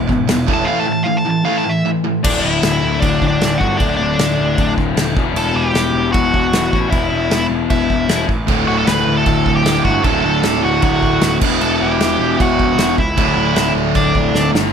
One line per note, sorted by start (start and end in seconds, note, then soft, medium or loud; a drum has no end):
0.09 0.27 G#1 medium
0.09 0.26 E2 medium
0.09 0.27 B2 medium
0.09 kick medium
0.29 0.46 E1 medium
0.29 0.46 E2 medium
0.29 0.46 B2 loud
0.29 snare loud
0.29 crash medium
0.48 0.66 E1 medium
0.48 0.66 A2 loud
0.48 0.67 E3 loud
0.48 0.67 A3 loud
0.48 kick loud
0.54 0.67 A5 loud
0.65 0.86 A2 medium
0.65 0.86 E3 loud
0.65 0.86 A3 loud
0.65 0.79 F5 loud
0.80 0.91 A5 medium
0.87 1.04 A2 medium
0.87 1.05 E3 medium
0.92 1.05 A5 loud
1.04 1.24 A2 medium
1.04 1.24 E3 medium
1.04 1.18 F5 loud
1.17 1.29 A5 loud
1.26 1.43 A2 medium
1.26 1.44 E3 medium
1.31 1.44 A5 loud
1.44 1.63 A2 loud
1.44 1.64 E3 loud
1.44 1.64 A3 loud
1.44 1.58 F5 loud
1.58 1.71 A5 medium
1.65 1.82 A2 medium
1.65 1.82 E3 medium
1.69 1.89 E5 loud
1.85 2.02 A2 medium
1.85 2.03 E3 loud
2.04 2.22 A2 medium
2.04 2.22 E3 loud
2.23 2.41 D1 loud
2.23 3.59 D2 medium
2.23 3.59 A2 medium
2.23 3.58 D3 medium
2.23 2.42 D4 medium
2.23 2.44 D5 medium
2.23 kick loud
2.23 crash loud
2.23 crash medium
2.42 2.60 D1 medium
2.42 2.98 E4 medium
2.42 3.03 E5 loud
2.63 2.80 D1 loud
2.63 snare loud
2.63 crash medium
2.83 3.00 D1 medium
3.00 3.19 D1 medium
3.00 3.29 D4 medium
3.00 3.26 D5 loud
3.00 kick loud
3.00 crash medium
3.21 3.38 D1 medium
3.21 kick medium
3.28 3.58 D4 medium
3.28 3.60 D5 loud
3.41 3.58 D1 loud
3.41 snare loud
3.41 crash medium
3.58 3.78 G1 medium
3.58 3.79 A2 medium
3.58 3.78 D3 loud
3.58 3.78 F#4 medium
3.58 3.77 F#5 loud
3.58 kick medium
3.62 3.78 D2 medium
3.77 3.97 D1 loud
3.77 5.15 D2 medium
3.77 5.16 A2 medium
3.77 3.97 D4 medium
3.77 3.96 D5 loud
3.77 kick loud
3.77 crash medium
3.82 5.16 D3 loud
3.97 4.16 D1 medium
3.97 4.73 D4 medium
3.97 4.72 D5 loud
4.19 4.36 D1 medium
4.19 snare loud
4.19 crash medium
4.39 4.56 D1 loud
4.58 4.75 D1 medium
4.58 kick loud
4.58 crash medium
4.77 4.95 D1 loud
4.77 kick loud
4.97 5.14 D#1 loud
4.97 snare loud
4.97 crash medium
5.16 5.34 E1 medium
5.16 6.51 E2 loud
5.16 6.52 B2 medium
5.16 6.53 E3 loud
5.16 kick loud
5.35 5.52 E1 loud
5.35 5.55 A4 medium
5.35 5.56 A5 loud
5.35 crash medium
5.55 5.72 E1 loud
5.55 6.10 G4 medium
5.55 6.10 G5 loud
5.74 5.92 E1 medium
5.74 snare loud
5.74 crash medium
5.94 6.11 E1 medium
6.12 6.31 E1 loud
6.12 6.87 F#4 medium
6.12 6.91 F#5 loud
6.12 kick loud
6.12 crash medium
6.34 6.51 E1 medium
6.34 kick loud
6.52 6.70 E1 loud
6.52 6.70 E2 medium
6.52 6.72 B2 medium
6.52 6.72 E3 loud
6.52 snare loud
6.52 crash medium
6.72 6.90 A1 medium
6.72 8.07 E2 loud
6.72 8.08 B2 loud
6.72 8.09 E3 loud
6.72 kick loud
6.90 7.09 E1 loud
6.90 7.46 E4 medium
6.90 7.46 E5 loud
6.90 kick loud
6.90 crash medium
7.12 7.29 E1 medium
7.30 7.48 E1 medium
7.30 snare loud
7.30 crash medium
7.49 7.67 E1 medium
7.70 7.87 E1 medium
7.70 8.25 E4 medium
7.70 8.25 E5 medium
7.70 kick loud
7.70 crash medium
7.90 8.07 E1 medium
7.90 kick medium
8.09 8.26 E1 medium
8.09 8.27 E2 loud
8.09 8.28 B2 loud
8.09 8.28 E3 medium
8.09 snare loud
8.09 crash medium
8.29 8.46 A1 loud
8.29 kick loud
8.46 8.66 D1 loud
8.46 9.83 D2 loud
8.46 9.83 A2 loud
8.46 9.82 D3 loud
8.46 kick loud
8.46 crash medium
8.67 8.85 D1 loud
8.67 8.77 F#4 medium
8.67 8.77 F#5 medium
8.77 8.87 A4 medium
8.77 8.87 A5 loud
8.87 9.04 D1 loud
8.87 9.15 B4 medium
8.87 9.18 B5 medium
8.87 snare loud
8.87 crash medium
9.07 9.24 D1 medium
9.17 9.53 A4 medium
9.17 9.56 A5 loud
9.26 9.44 D1 medium
9.26 kick loud
9.26 crash medium
9.46 9.63 D1 medium
9.46 kick medium
9.55 9.83 G4 medium
9.55 9.85 G5 loud
9.65 9.82 D1 loud
9.65 snare loud
9.65 crash medium
9.83 10.02 G1 medium
9.83 10.03 D2 medium
9.83 10.03 A2 medium
9.83 10.02 D3 medium
9.83 10.03 F#4 medium
9.83 10.04 F#5 medium
9.83 kick medium
10.04 10.22 D1 loud
10.04 11.40 D2 medium
10.04 11.40 A2 loud
10.04 11.41 D3 loud
10.04 10.22 A4 medium
10.04 10.23 A5 loud
10.04 kick loud
10.04 crash medium
10.23 10.41 D1 loud
10.23 10.61 A4 medium
10.23 10.64 A5 loud
10.43 10.61 D1 medium
10.43 snare loud
10.43 crash medium
10.64 10.81 D1 medium
10.64 10.82 F#4 medium
10.64 10.82 F#5 medium
10.82 11.00 D1 loud
10.82 11.38 F#4 medium
10.82 11.37 F#5 loud
10.82 kick loud
10.82 crash medium
11.03 11.19 D1 loud
11.03 kick medium
11.21 11.39 D1 loud
11.21 snare loud
11.21 crash medium
11.41 11.58 E1 medium
11.41 12.75 E2 loud
11.41 12.77 B2 loud
11.41 12.78 E3 loud
11.41 kick loud
11.41 crash loud
11.61 11.78 E1 loud
11.61 11.79 A4 medium
11.61 11.81 A5 medium
11.61 crash medium
11.81 11.98 E1 medium
11.81 12.36 G4 medium
11.81 12.40 G5 loud
11.99 12.17 E1 loud
11.99 snare loud
11.99 crash medium
12.19 12.36 E1 medium
12.40 12.57 E1 medium
12.40 12.95 F#4 medium
12.40 12.94 F#5 loud
12.40 kick loud
12.40 crash medium
12.59 12.76 E1 medium
12.59 kick loud
12.76 12.94 E1 loud
12.76 12.96 E2 medium
12.76 12.96 B2 medium
12.76 12.97 E3 loud
12.76 snare loud
12.76 crash medium
12.98 13.15 C#2 medium
12.98 13.73 E4 medium
12.98 13.72 E5 loud
12.98 kick loud
13.16 13.34 D1 loud
13.16 14.52 D2 medium
13.16 14.53 A2 medium
13.16 14.51 D3 loud
13.16 kick loud
13.16 crash medium
13.36 13.53 D1 medium
13.55 13.73 D1 loud
13.55 snare loud
13.55 crash medium
13.74 13.92 D1 medium
13.95 14.13 D1 medium
13.95 14.50 D4 medium
13.95 14.50 D5 medium
13.95 kick loud
13.95 crash medium
14.15 14.32 D1 medium
14.15 kick medium
14.33 14.51 D1 loud
14.33 snare medium
14.52 14.71 G1 loud
14.52 14.71 D2 medium
14.52 14.72 A2 medium
14.52 14.72 D3 medium
14.52 snare loud